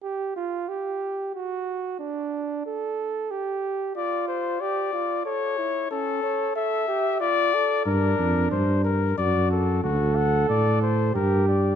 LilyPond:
<<
  \new Staff \with { instrumentName = "Trumpet" } { \time 3/4 \key d \phrygian \tempo 4 = 92 r2. | r2. | d''8 c''8 d''4 cis''4 | a'4 e''4 d''4 |
bes'4 c''8 bes'8 d''8 a'8 | fis'8 fis''8 d''8 c''8 bes'8 d''8 | }
  \new Staff \with { instrumentName = "Flugelhorn" } { \time 3/4 \key d \phrygian g'8 f'8 g'4 fis'4 | d'4 a'4 g'4 | f'4 g'8 f'8 a'8 e'8 | cis'8 cis''8 a'8 g'8 f'8 a'8 |
d'4. r8 fis'4 | a'2 g'4 | }
  \new Staff \with { instrumentName = "Tuba" } { \clef bass \time 3/4 \key d \phrygian r2. | r2. | r2. | r2. |
g,8 f,8 g,4 fis,4 | d,4 a,4 g,4 | }
>>